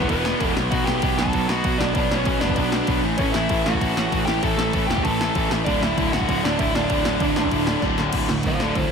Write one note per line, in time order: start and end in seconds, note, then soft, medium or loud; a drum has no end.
0.00 0.10 E3 loud
0.00 kick medium
0.09 0.33 E1 loud
0.09 0.25 E2 loud
0.09 0.25 B2 loud
0.09 0.24 E3 loud
0.09 0.54 B3 medium
0.09 0.53 B4 loud
0.09 kick loud
0.09 crash medium
0.25 0.40 E2 medium
0.25 0.40 B2 medium
0.25 0.41 E3 loud
0.25 snare loud
0.41 0.52 E1 medium
0.41 0.55 E2 medium
0.41 0.56 B2 loud
0.41 0.56 E3 loud
0.41 kick loud
0.41 crash medium
0.56 0.68 B1 medium
0.56 0.73 B2 loud
0.56 0.72 F#3 loud
0.56 0.71 B3 loud
0.56 snare loud
0.71 0.84 B1 loud
0.71 0.87 B2 loud
0.71 0.88 F#3 loud
0.71 0.88 B3 loud
0.71 0.87 F#4 medium
0.71 0.85 F#5 loud
0.71 kick loud
0.71 crash medium
0.85 0.99 B1 loud
0.85 1.04 B2 medium
0.85 1.03 F#3 loud
0.85 1.03 B3 loud
0.85 1.17 G4 medium
0.85 1.18 G5 loud
0.85 snare loud
1.02 1.14 B1 loud
1.02 1.17 B2 medium
1.02 1.18 F#3 medium
1.02 1.18 B3 medium
1.02 kick loud
1.02 crash medium
1.17 1.29 B1 medium
1.17 1.33 B2 medium
1.17 1.33 F#3 medium
1.17 1.33 B3 loud
1.17 1.48 A4 medium
1.17 1.50 A5 loud
1.17 snare loud
1.26 kick medium
1.33 1.45 B1 loud
1.33 1.48 B2 medium
1.33 1.49 F#3 loud
1.33 1.49 B3 loud
1.33 kick medium
1.33 crash medium
1.48 1.61 B1 medium
1.48 1.65 B2 medium
1.48 1.64 F#3 medium
1.48 1.64 B3 loud
1.48 1.79 F#4 medium
1.48 1.81 F#5 loud
1.48 snare loud
1.64 1.76 B1 loud
1.64 1.79 B2 medium
1.64 1.80 F#3 loud
1.64 1.80 B3 loud
1.64 kick loud
1.64 crash medium
1.78 1.92 B1 loud
1.78 1.95 B2 medium
1.78 1.95 F#3 loud
1.78 1.94 B3 loud
1.78 1.95 D4 medium
1.78 1.93 D5 loud
1.78 snare loud
1.94 2.07 B1 loud
1.94 2.11 B2 medium
1.94 2.11 F#3 loud
1.94 2.12 B3 loud
1.94 2.18 D4 medium
1.94 2.16 D5 loud
1.94 kick loud
1.94 crash medium
2.11 2.23 B1 medium
2.11 2.27 B2 medium
2.11 2.26 F#3 medium
2.11 2.26 B3 loud
2.11 snare loud
2.16 2.41 C#4 medium
2.16 2.40 C#5 loud
2.25 2.38 B1 loud
2.25 2.41 B2 medium
2.25 2.42 F#3 medium
2.25 2.42 B3 loud
2.25 kick loud
2.25 crash medium
2.40 2.54 F#1 medium
2.40 2.58 B2 medium
2.40 2.57 F#3 loud
2.40 2.57 B3 loud
2.40 2.57 D4 medium
2.40 2.54 D5 medium
2.40 snare loud
2.49 kick medium
2.56 2.81 B1 loud
2.56 2.72 B2 medium
2.56 2.73 F#3 loud
2.56 2.73 B3 loud
2.56 3.01 D4 medium
2.56 3.00 D5 loud
2.56 kick loud
2.56 crash medium
2.72 2.89 B2 medium
2.72 2.88 F#3 loud
2.72 2.87 B3 medium
2.72 snare loud
2.87 3.00 B1 loud
2.87 3.03 B2 medium
2.87 3.03 F#3 medium
2.87 3.03 B3 loud
2.87 kick loud
2.87 crash medium
3.03 3.15 A1 medium
3.03 3.20 A2 loud
3.03 3.19 E3 loud
3.03 3.19 A3 loud
3.18 3.31 A1 loud
3.18 3.34 A2 medium
3.18 3.35 E3 loud
3.18 3.35 A3 loud
3.18 3.34 C#4 medium
3.18 3.35 C#5 loud
3.18 kick loud
3.18 crash medium
3.32 3.46 A1 medium
3.32 3.50 A2 medium
3.32 3.50 E3 loud
3.32 3.49 A3 loud
3.32 3.63 E4 medium
3.32 3.63 E5 loud
3.32 snare loud
3.49 3.62 A1 loud
3.49 3.65 A2 medium
3.49 3.66 E3 medium
3.49 3.66 A3 loud
3.49 kick loud
3.49 crash medium
3.63 3.77 A1 medium
3.63 3.80 A2 medium
3.63 3.80 E3 loud
3.63 3.80 A3 loud
3.63 4.24 F#4 medium
3.63 4.28 F#5 loud
3.63 snare loud
3.73 kick medium
3.81 3.93 A1 loud
3.81 3.95 A2 medium
3.81 3.96 E3 loud
3.81 3.97 A3 loud
3.81 kick loud
3.81 crash medium
3.95 4.08 A1 medium
3.95 4.11 A2 medium
3.95 4.11 E3 medium
3.95 4.11 A3 loud
3.95 snare loud
4.12 4.23 A1 loud
4.12 4.27 A2 medium
4.12 4.27 E3 loud
4.12 4.28 A3 loud
4.12 kick loud
4.12 crash medium
4.25 4.39 A1 medium
4.25 4.43 A2 medium
4.25 4.42 E3 loud
4.25 4.42 A3 medium
4.25 4.42 G4 medium
4.25 4.43 G5 loud
4.25 snare loud
4.43 4.55 A1 loud
4.43 4.56 A2 medium
4.43 4.57 E3 medium
4.43 4.59 A3 loud
4.43 4.87 A4 medium
4.43 4.87 A5 loud
4.43 kick loud
4.43 crash medium
4.58 4.70 A1 medium
4.58 4.73 A2 loud
4.58 4.73 E3 loud
4.58 4.73 A3 loud
4.58 snare loud
4.73 4.85 A1 loud
4.73 4.88 A2 medium
4.73 4.88 E3 medium
4.73 4.89 A3 loud
4.73 kick loud
4.73 crash medium
4.87 5.00 E1 medium
4.87 5.03 A2 medium
4.87 5.03 E3 medium
4.87 5.03 A3 loud
4.87 5.04 G4 medium
4.87 5.04 G5 medium
4.87 snare loud
4.97 kick medium
5.04 5.28 A1 loud
5.04 5.18 A2 loud
5.04 5.19 E3 loud
5.04 5.20 A3 loud
5.04 5.49 A4 medium
5.04 5.48 A5 loud
5.04 kick medium
5.04 crash medium
5.20 5.35 A2 medium
5.20 5.34 E3 loud
5.20 5.35 A3 loud
5.20 snare loud
5.35 5.47 A1 medium
5.35 5.50 A2 medium
5.35 5.50 E3 loud
5.35 5.51 A3 loud
5.35 kick loud
5.35 crash medium
5.50 5.62 A1 medium
5.50 5.66 A2 medium
5.50 5.66 E3 loud
5.50 5.67 A3 loud
5.50 snare loud
5.65 5.78 D1 loud
5.65 5.82 D2 loud
5.65 5.81 A2 loud
5.65 5.81 D3 loud
5.65 5.82 D4 medium
5.65 5.82 D5 loud
5.65 kick loud
5.65 crash medium
5.81 5.93 D1 medium
5.81 5.97 D2 medium
5.81 5.97 A2 medium
5.81 5.98 D3 loud
5.81 6.12 E4 medium
5.81 6.14 E5 loud
5.81 snare loud
5.97 6.09 D1 loud
5.97 6.14 D2 medium
5.97 6.13 A2 loud
5.97 6.13 D3 loud
5.97 kick loud
5.97 crash medium
6.13 6.24 D1 medium
6.13 6.28 D2 medium
6.13 6.28 A2 loud
6.13 6.29 D3 loud
6.13 6.43 F#4 medium
6.13 6.45 F#5 loud
6.13 snare loud
6.21 kick medium
6.28 6.40 D1 medium
6.28 6.44 D2 loud
6.28 6.43 A2 loud
6.28 6.43 D3 loud
6.28 kick loud
6.28 crash medium
6.43 6.55 D1 medium
6.43 6.59 D2 medium
6.43 6.59 A2 medium
6.43 6.60 D3 loud
6.43 6.59 D4 medium
6.43 6.58 D5 medium
6.43 snare loud
6.59 6.71 D1 medium
6.59 6.76 D2 medium
6.59 6.74 A2 loud
6.59 6.74 D3 loud
6.59 6.74 E4 medium
6.59 6.74 E5 loud
6.59 kick loud
6.59 crash medium
6.74 6.86 D1 medium
6.74 6.88 D2 medium
6.74 6.89 A2 medium
6.74 6.89 D3 medium
6.74 7.79 D4 medium
6.74 7.83 D5 medium
6.74 snare loud
6.90 7.02 D1 loud
6.90 7.05 D2 loud
6.90 7.05 A2 loud
6.90 7.05 D3 loud
6.90 kick loud
6.90 crash medium
7.05 7.17 D1 medium
7.05 7.19 D2 medium
7.05 7.20 A2 loud
7.05 7.20 D3 loud
7.05 snare loud
7.20 7.32 D1 loud
7.20 7.36 D2 loud
7.20 7.35 A2 loud
7.20 7.35 D3 loud
7.20 kick loud
7.20 crash medium
7.36 7.48 A1 medium
7.36 7.50 D2 medium
7.36 7.51 A2 medium
7.36 7.51 D3 medium
7.36 snare loud
7.44 kick medium
7.51 7.75 D1 loud
7.51 7.66 D2 loud
7.51 7.65 A2 loud
7.51 7.65 D3 loud
7.51 kick loud
7.51 crash medium
7.66 7.81 D2 medium
7.66 7.81 A2 medium
7.66 7.82 D3 loud
7.66 snare loud
7.82 7.94 D1 medium
7.82 7.98 D2 medium
7.82 7.97 A2 loud
7.82 7.97 D3 loud
7.82 kick loud
7.82 snare medium
7.98 8.10 D1 medium
7.98 8.12 D2 medium
7.98 8.12 A2 loud
7.98 8.12 D3 loud
7.98 snare medium
8.13 8.25 D1 medium
8.13 8.28 D2 medium
8.13 8.28 A2 loud
8.13 8.29 D3 loud
8.13 8.92 A3 loud
8.13 8.92 F#4 loud
8.13 kick loud
8.13 crash loud
8.13 crash medium
8.28 8.41 D1 medium
8.28 8.44 D2 medium
8.28 8.44 A2 medium
8.28 snare loud
8.43 8.56 D1 medium
8.43 8.58 D2 medium
8.43 8.59 A2 medium
8.43 8.62 C5 medium
8.43 8.63 F5 medium
8.43 kick loud
8.43 crash medium
8.59 8.72 D1 medium
8.59 8.74 D2 medium
8.59 8.75 A2 medium
8.59 8.75 D3 loud
8.59 8.75 A4 medium
8.59 8.77 D5 medium
8.59 snare loud
8.75 8.87 D1 medium
8.75 8.90 D2 medium
8.75 8.90 A2 medium
8.75 8.91 A4 medium
8.75 8.92 C5 medium
8.75 kick loud
8.75 crash medium